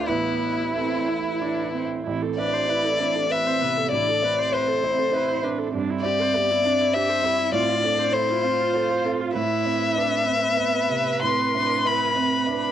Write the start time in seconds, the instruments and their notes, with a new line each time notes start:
Already playing: grand piano D2 F4 B4 C5 D5 E5, cello D4
0.07 grand piano A1 B4, viola B3, violin E4, cello E4
0.31 grand piano E4
0.52 grand piano E5
0.75 viola C4, grand piano E4 A4
0.97 grand piano E5
1.08 viola E4
1.19 grand piano E4
1.41 viola D4, grand piano E5
1.62 grand piano E4
1.74 viola C4
1.85 grand piano E5
2.07 grand piano A1, cello C4, viola E4
2.22 viola A4
2.37 grand piano C4 E5, cello D4, viola B4, violin D5
2.54 viola C5
2.68 cello E4, grand piano B4 E5, viola B4
2.85 viola A4
2.99 grand piano C4 E5, cello D4, viola E4
3.15 viola A4
3.29 cello C4, grand piano B4 E5, viola B4, violin E5
3.47 viola C5
3.61 grand piano C3 E5, cello B3, viola B4
3.78 viola A4
3.91 grand piano A1, cello D4, viola E4, violin D5
4.09 viola A4
4.22 grand piano C4 E5, cello C4, viola B4
4.39 viola C5
4.52 viola B4, grand piano C5 E5, violin C5
4.68 viola A4
4.83 grand piano C4 E5, viola E4
4.99 viola A4
5.12 cello E4, viola B4, grand piano C5 E5
5.28 viola C5
5.42 grand piano C4 E5, cello D4, viola B4
5.58 viola A4
5.73 grand piano G2, cello C4, viola D4
5.90 viola E4
6.02 grand piano C4 E5, viola G4, violin D5
6.21 viola C5
6.33 cello B3, viola G4, grand piano D5 E5
6.51 viola E4
6.63 grand piano C4 E5, cello C4, viola D4
6.81 viola E4
6.93 cello D4, viola G4, grand piano C5 E5, violin E5
7.10 viola C5
7.23 grand piano C4 E5, cello E4, viola G4
7.38 viola E4
7.52 grand piano A2, viola C4, cello F4, violin D5
7.70 viola F4
7.81 grand piano C4 F5, cello D4, viola A4
7.99 viola C5
8.12 cello E4, viola A4, grand piano C5, violin C5
8.30 viola F4
8.42 grand piano C4 F5, viola C4, cello F4
8.61 viola F4
8.73 viola A4, grand piano C5 F5
8.91 viola C5
9.04 grand piano C4 F5, viola A4
9.21 viola F4
9.34 grand piano A2, cello E4, viola B4, violin E5
9.65 grand piano C4 E5
9.96 cello D4, grand piano B4 E5
10.26 cello C4, grand piano C4 E5
10.57 cello B3, grand piano B4 E5
10.89 grand piano C3 E5
11.22 grand piano A2, cello C4, violin C6
11.54 grand piano C4 E5, cello D4
11.85 cello E4, grand piano B4 E5, violin B5
12.16 grand piano C4 E5, cello C4
12.46 cello D4, grand piano B4 E5